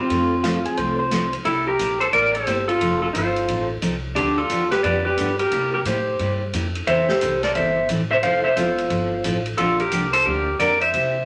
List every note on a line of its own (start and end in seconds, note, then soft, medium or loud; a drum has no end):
0.00 1.30 C4 medium
0.00 1.30 F4 medium
0.10 0.64 F2 medium
0.10 0.32 F3 medium
0.10 0.32 A3 medium
0.10 0.32 C4 medium
0.10 0.32 F4 medium
0.10 0.32 A4 medium
0.10 ride medium
0.44 0.56 F3 medium
0.44 0.56 A3 medium
0.44 0.56 C4 medium
0.44 0.65 F4 medium
0.44 0.56 F4 medium
0.44 0.56 A4 medium
0.44 snare medium
0.44 hi-hat pedal medium
0.44 ride medium
0.65 0.77 G#4 medium
0.65 ride soft
0.77 1.32 C2 medium
0.77 1.00 F3 soft
0.77 1.00 A3 medium
0.77 1.00 C4 medium
0.77 1.00 F4 medium
0.77 1.00 A4 medium
0.77 0.98 C5 medium
0.77 ride medium
0.99 1.32 C5 medium
1.11 1.23 F3 medium
1.11 1.23 A3 medium
1.11 1.23 C4 medium
1.11 1.24 F4 medium
1.11 1.24 A4 medium
1.11 snare medium
1.11 hi-hat pedal medium
1.11 ride medium
1.33 ride soft
1.45 1.78 C2 medium
1.45 1.67 C3 medium
1.45 1.67 G3 medium
1.45 1.67 A#3 medium
1.45 1.66 E4 medium
1.45 1.68 E4 medium
1.45 1.68 G4 medium
1.45 1.68 A4 medium
1.45 ride medium
1.68 2.00 G4 medium
1.68 2.01 A#4 medium
1.79 2.12 A#1 medium
1.79 1.91 C3 medium
1.79 1.91 G3 medium
1.79 1.91 A#3 medium
1.79 1.91 E4 medium
1.79 1.92 G4 medium
1.79 hi-hat pedal medium
1.79 ride medium
2.00 2.06 A4 medium
2.00 2.05 C5 medium
2.00 ride soft
2.13 2.46 A1 medium
2.13 2.35 C3 medium
2.13 2.35 G3 medium
2.13 2.35 A#3 medium
2.13 2.35 E4 medium
2.13 2.35 G4 medium
2.13 2.34 A#4 medium
2.13 2.35 D5 loud
2.13 ride medium
2.35 2.69 G4 medium
2.35 2.67 A4 medium
2.35 2.70 C5 medium
2.35 ride medium
2.47 2.80 G1 loud
2.47 2.59 C3 medium
2.47 2.59 G3 medium
2.47 2.59 A#3 medium
2.47 2.59 E4 medium
2.47 2.59 G4 medium
2.47 hi-hat pedal medium
2.47 ride medium
2.68 3.01 F4 medium
2.68 3.01 A4 loud
2.68 ride soft
2.81 3.14 F1 medium
2.81 3.03 F3 medium
2.81 3.03 C4 medium
2.81 3.03 D#4 medium
2.81 3.03 A4 medium
2.81 ride medium
3.02 3.08 F4 medium
3.02 3.07 A4 medium
3.13 3.47 G1 medium
3.13 3.26 F3 medium
3.13 3.27 C4 medium
3.13 3.27 D#4 medium
3.13 3.66 F4 medium
3.13 3.27 A4 medium
3.13 3.67 A4 medium
3.13 3.66 C5 medium
3.13 hi-hat pedal medium
3.13 ride medium
3.36 ride soft
3.48 3.81 A1 medium
3.48 3.71 F3 soft
3.48 3.71 C4 medium
3.48 3.71 D#4 medium
3.48 3.71 A4 medium
3.48 ride medium
3.82 4.15 C2 loud
3.82 3.94 F3 medium
3.82 3.94 C4 medium
3.82 3.94 D#4 medium
3.82 3.94 A4 medium
3.82 hi-hat pedal medium
3.82 ride medium
4.16 4.49 D2 medium
4.16 4.38 D3 medium
4.16 4.38 F3 medium
4.16 4.38 B3 medium
4.16 4.36 D4 medium
4.16 4.38 D4 medium
4.16 4.36 G4 medium
4.16 4.38 G4 medium
4.16 ride medium
4.38 4.70 F4 medium
4.38 4.71 A4 medium
4.50 4.83 E2 medium
4.50 4.62 D3 medium
4.50 4.62 F3 medium
4.50 4.62 B3 medium
4.50 4.62 D4 medium
4.50 4.62 G4 medium
4.50 hi-hat pedal medium
4.50 ride medium
4.71 4.83 G4 medium
4.71 4.83 B4 loud
4.71 snare soft
4.71 ride soft
4.83 5.17 F2 medium
4.83 5.06 D3 medium
4.83 5.06 F3 medium
4.83 5.06 B3 medium
4.83 5.06 D4 medium
4.83 5.05 G4 medium
4.83 5.06 G4 medium
4.83 5.04 B4 medium
4.83 5.06 D5 loud
4.83 ride medium
5.05 5.37 G4 medium
5.05 5.39 B4 loud
5.17 5.50 G2 medium
5.17 5.29 D3 medium
5.17 5.30 F3 medium
5.17 5.30 B3 medium
5.17 5.30 D4 medium
5.17 5.30 G4 medium
5.17 hi-hat pedal medium
5.17 ride medium
5.39 5.71 G4 medium
5.39 5.71 A#4 medium
5.39 ride medium
5.51 5.84 C3 medium
5.51 5.74 C3 medium
5.51 5.74 G3 medium
5.51 5.74 A#3 medium
5.51 5.74 E4 medium
5.51 5.74 G4 medium
5.51 ride medium
5.74 5.79 G4 medium
5.74 5.79 A#4 medium
5.85 6.18 A2 medium
5.85 5.97 C3 medium
5.85 5.97 G3 medium
5.85 5.98 A#3 medium
5.85 5.98 E4 medium
5.85 6.38 G4 medium
5.85 5.98 G4 medium
5.85 6.42 C5 medium
5.85 hi-hat pedal medium
5.85 ride medium
6.19 6.52 G2 medium
6.19 6.41 C3 medium
6.19 6.41 G3 medium
6.19 6.42 A#3 medium
6.19 6.42 E4 medium
6.19 6.42 G4 medium
6.19 ride medium
6.53 6.86 F2 medium
6.53 6.65 C3 medium
6.53 6.65 G3 medium
6.53 6.65 A#3 medium
6.53 6.65 E4 medium
6.53 6.65 G4 medium
6.53 hi-hat pedal medium
6.53 ride medium
6.75 ride medium
6.87 7.20 E2 medium
6.87 7.09 E3 medium
6.87 7.09 G3 medium
6.87 7.09 C4 medium
6.87 7.10 E4 medium
6.87 7.10 A4 medium
6.87 7.07 C5 medium
6.87 7.09 E5 medium
6.87 ride medium
7.09 7.40 G4 medium
7.09 7.41 A4 medium
7.09 7.44 C5 medium
7.09 snare medium
7.21 7.54 C2 medium
7.21 7.33 E3 medium
7.21 7.33 G3 medium
7.21 7.33 C4 medium
7.21 7.33 E4 medium
7.21 7.33 A4 medium
7.21 hi-hat pedal medium
7.21 ride medium
7.43 7.55 A4 medium
7.43 7.55 A#4 medium
7.43 7.55 D5 medium
7.43 snare soft
7.43 ride soft
7.55 7.88 G1 medium
7.55 7.77 E3 medium
7.55 7.77 G3 medium
7.55 7.77 C4 medium
7.55 7.77 E4 medium
7.55 7.77 A4 medium
7.55 7.87 C5 medium
7.55 7.89 E5 medium
7.55 ride medium
7.89 8.21 A1 medium
7.89 8.00 E3 medium
7.89 8.01 G3 medium
7.89 8.01 C4 medium
7.89 8.01 E4 medium
7.89 8.01 A4 medium
7.89 hi-hat pedal medium
7.89 ride medium
8.11 8.17 C5 medium
8.11 8.16 E5 loud
8.23 8.56 F1 medium
8.23 8.45 F3 medium
8.23 8.45 C4 medium
8.23 8.45 E4 medium
8.23 8.45 A4 medium
8.23 8.43 C5 medium
8.23 8.44 F5 loud
8.23 ride medium
8.44 8.55 C5 medium
8.44 8.56 E5 medium
8.56 8.89 E1 medium
8.56 8.68 F3 medium
8.56 8.68 C4 medium
8.56 8.68 E4 medium
8.56 9.42 F4 medium
8.56 9.42 A4 medium
8.56 8.68 A4 medium
8.56 9.42 C5 medium
8.56 hi-hat pedal medium
8.56 ride medium
8.78 ride soft
8.90 9.23 G1 medium
8.90 9.12 F3 medium
8.90 9.12 C4 soft
8.90 9.12 E4 medium
8.90 9.12 A4 medium
8.90 ride medium
9.24 9.57 A1 loud
9.24 9.36 F3 medium
9.24 9.36 C4 medium
9.24 9.36 E4 medium
9.24 9.36 A4 medium
9.24 hi-hat pedal medium
9.24 ride medium
9.46 ride soft
9.57 9.91 A#1 medium
9.57 9.80 D3 medium
9.57 9.80 F3 medium
9.57 9.80 A#3 medium
9.57 9.80 D4 medium
9.57 9.78 F4 medium
9.57 9.80 G4 medium
9.57 9.80 A4 medium
9.57 ride medium
9.80 10.12 G4 medium
9.80 10.13 A#4 medium
9.80 ride soft
9.91 10.25 C2 medium
9.91 10.03 D3 medium
9.91 10.03 F3 medium
9.91 10.04 A#3 medium
9.91 10.04 D4 medium
9.91 10.04 G4 medium
9.91 hi-hat pedal medium
9.91 ride medium
10.13 10.25 A4 medium
10.13 10.26 C5 medium
10.13 ride medium
10.25 10.59 D2 medium
10.25 10.47 D3 medium
10.25 10.48 F3 medium
10.25 10.48 A#3 medium
10.25 10.48 D4 medium
10.25 10.57 G4 medium
10.25 10.48 G4 medium
10.25 10.57 A#4 medium
10.59 10.92 F2 loud
10.59 10.71 D3 medium
10.59 10.71 F3 medium
10.59 10.71 A#3 medium
10.59 10.71 D4 medium
10.59 10.72 G4 medium
10.59 10.80 A#4 medium
10.59 10.80 D5 medium
10.59 hi-hat pedal medium
10.59 ride medium
10.81 11.25 C5 medium
10.81 11.25 E5 medium
10.81 ride medium
10.93 11.25 C3 medium
10.93 11.15 C3 medium
10.93 11.16 G3 medium
10.93 11.16 A#3 medium
10.93 11.16 E4 medium
10.93 11.16 G4 medium
10.93 ride medium